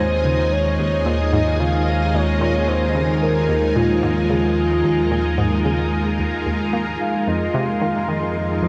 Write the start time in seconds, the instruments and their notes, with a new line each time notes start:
Already playing: analog synth bass D#2, string machine G#3 D#4 F4 A#4 D#5, soft synth lead C5, synth texture G#5
0.25 synth arpeggio sound C#3
0.52 soft synth lead C#5
0.79 synth arpeggio sound D#2
1.06 synth arpeggio sound A#2, soft synth lead D#5
1.33 synth arpeggio sound G#2
1.60 synth arpeggio sound C#3, soft synth lead F5
2.14 synth arpeggio sound D#2, soft synth lead C#5
2.41 synth arpeggio sound A#2
2.68 synth arpeggio sound G#2, soft synth lead C5
2.95 synth arpeggio sound C#3
3.22 soft synth lead A#4
3.49 synth arpeggio sound D#2
3.76 synth arpeggio sound A#2, soft synth lead F4
4.03 synth arpeggio sound G#2
4.30 synth arpeggio sound C#3
4.84 synth arpeggio sound D#2
5.11 synth arpeggio sound A#2
5.38 synth arpeggio sound G#2
5.65 synth arpeggio sound C#3
6.19 synth arpeggio sound D#2
6.46 synth arpeggio sound D#2
6.73 synth arpeggio sound A#3
7.00 analog synth bass F2, soft synth lead F5, synth texture C6
7.27 synth arpeggio sound F2, soft synth lead D#5
7.54 synth arpeggio sound C3, soft synth lead F5
7.81 synth arpeggio sound D#3
8.08 synth arpeggio sound D#3, soft synth lead D#5
8.63 synth arpeggio sound F2